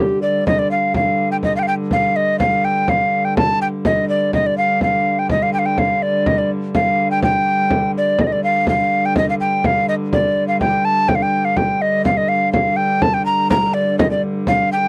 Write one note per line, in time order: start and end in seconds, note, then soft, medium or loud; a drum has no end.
0.00 0.47 G2 medium
0.00 0.46 D3 medium
0.00 0.22 G4 medium
0.22 0.45 D5 medium
0.46 4.34 G2 medium
0.46 4.34 D3 medium
0.46 0.60 D#5 medium
0.46 frame drum medium
0.59 0.71 D5 medium
0.71 0.93 F5 medium
0.94 1.29 F5 medium
0.94 frame drum medium
1.31 1.37 G5 medium
1.43 1.55 D#5 medium
1.43 frame drum medium
1.56 1.60 F5 medium
1.56 1.64 G5 medium
1.63 1.67 F5 medium
1.63 frame drum soft
1.68 1.74 G5 medium
1.91 2.18 F5 medium
1.91 frame drum medium
2.16 2.39 D#5 medium
2.39 2.66 F5 medium
2.39 frame drum medium
2.64 2.91 G5 medium
2.64 frame drum soft
2.88 3.26 F5 medium
2.88 frame drum medium
3.25 3.37 G5 medium
3.37 3.59 A5 loud
3.37 frame drum loud
3.62 3.68 G5 medium
3.85 4.08 D#5 medium
3.85 frame drum medium
4.09 4.32 D5 medium
4.33 8.20 G2 medium
4.33 8.21 D3 medium
4.33 4.48 D#5 medium
4.33 frame drum medium
4.46 4.57 D5 medium
4.57 4.80 F5 medium
4.57 frame drum soft
4.81 5.20 F5 medium
4.81 frame drum medium
5.19 5.30 G5 medium
5.29 5.44 D#5 medium
5.29 frame drum medium
5.43 5.53 F5 medium
5.53 5.60 G5 medium
5.53 frame drum soft
5.59 5.67 F5 medium
5.66 5.80 G5 medium
5.78 6.04 F5 medium
5.78 frame drum medium
6.02 6.28 D5 medium
6.26 6.40 D#5 medium
6.26 frame drum medium
6.38 6.50 D5 medium
6.75 7.09 F5 medium
6.75 frame drum medium
7.11 7.22 G5 medium
7.22 7.91 G5 loud
7.22 frame drum medium
7.47 frame drum soft
7.70 frame drum medium
7.95 8.22 D5 medium
7.95 frame drum soft
8.19 12.05 G2 medium
8.19 12.05 D3 medium
8.19 8.28 D5 medium
8.19 8.24 D#5 medium
8.19 frame drum medium
8.27 8.34 D#5 medium
8.32 8.43 D5 medium
8.43 8.66 F5 medium
8.43 frame drum soft
8.67 9.07 F5 medium
8.67 frame drum medium
9.06 9.17 G5 medium
9.16 9.28 D#5 medium
9.16 frame drum medium
9.30 9.35 F5 medium
9.40 9.67 G5 medium
9.40 frame drum soft
9.64 9.88 F5 medium
9.64 frame drum medium
9.89 9.95 D#5 medium
10.13 10.47 D5 medium
10.13 frame drum medium
10.36 frame drum soft
10.48 10.60 F5 medium
10.61 10.86 G5 medium
10.61 frame drum medium
10.85 11.10 A5 medium
11.08 11.17 G5 medium
11.08 frame drum medium
11.15 11.24 F5 medium
11.22 11.46 G5 medium
11.45 11.58 F5 medium
11.57 11.83 G5 medium
11.57 frame drum medium
11.82 12.05 D#5 medium
12.05 14.88 G2 medium
12.05 14.88 D3 medium
12.05 12.19 F5 medium
12.05 frame drum medium
12.17 12.30 D#5 medium
12.29 12.52 F5 medium
12.29 frame drum soft
12.53 12.78 F5 medium
12.53 frame drum medium
12.77 13.04 G5 loud
13.02 13.15 A5 loud
13.02 frame drum medium
13.14 13.25 G5 medium
13.26 13.48 A#5 loud
13.26 frame drum soft
13.50 13.75 A#5 loud
13.50 frame drum medium
13.74 13.98 D5 medium
13.99 14.10 D#5 medium
13.99 frame drum loud
14.11 14.22 D5 medium
14.23 frame drum soft
14.47 14.70 F5 medium
14.47 frame drum medium
14.72 14.88 G5 loud